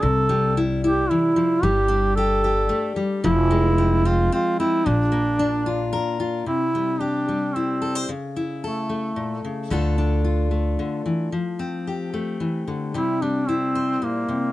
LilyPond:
<<
  \new Staff \with { instrumentName = "Duduk" } { \time 3/4 \key c \mixolydian \tempo 4 = 111 a'4 r8 g'8 e'4 | g'4 a'4. r8 | e'4. f'8 f'8 e'8 | d'2 r4 |
e'4 d'4 c'4 | r4 a4. r8 | r2. | r2. |
e'8 d'8 c'4 bes4 | }
  \new Staff \with { instrumentName = "Steel-string acoustic guitar" } { \time 3/4 \key c \mixolydian << { r4 e'8 e'4. | r4 g'8 g'4. | r4 c'8 c'8 c'8 c'8 | r4 d'8 f'8 bes'8 f'8 |
r8 g8 g'4 e'8 a'16 c''16 | r8 e'8 a'2 | <a d' f' a'>8 d'8 f'2 | r8 c'8 g'2 |
g8 r8 e'8 c''4. | } \\ { c8 g4. e8 f8 | g8 d'4. a8 g8 | f8 aes2~ aes8 | bes,8 bes2~ bes8 |
c4. g4. | cis4. a8 bes,8 cis8 | d4. a8 d8 e8 | f4. a8 e8 d8 |
c8 g4. bes,8 c8 | } >> }
  \new Staff \with { instrumentName = "Upright bass" } { \clef bass \time 3/4 \key c \mixolydian c,2 r4 | g,,2 r4 | f,,2 r4 | bes,,2 r4 |
r2. | r2. | d,2 r4 | r2. |
r2. | }
>>